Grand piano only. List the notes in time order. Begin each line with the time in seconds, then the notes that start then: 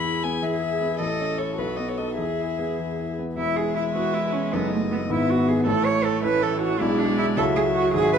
Already playing: E2
0.05 E4
0.24 B3
0.42 E2
0.81 B3
1.00 A1
1.20 C#4
1.39 E4 A4
1.58 B1
1.78 B3
1.98 D#4 A4
2.18 E2
2.38 E4
2.59 B3
2.79 E2
2.99 E4
3.19 B3
3.37 E1 E2
3.95 B3 E4 G#4
4.53 F#1 F#2 B3 D#4 A4
5.09 G#1 G#2 B3 E4 B4
5.67 A1 A2
6.23 C#4 E4 A4
6.81 B1 B2 D4 E4 G#4
7.37 C#2 C#3 C#4 E4 A4
7.95 G#1 G#2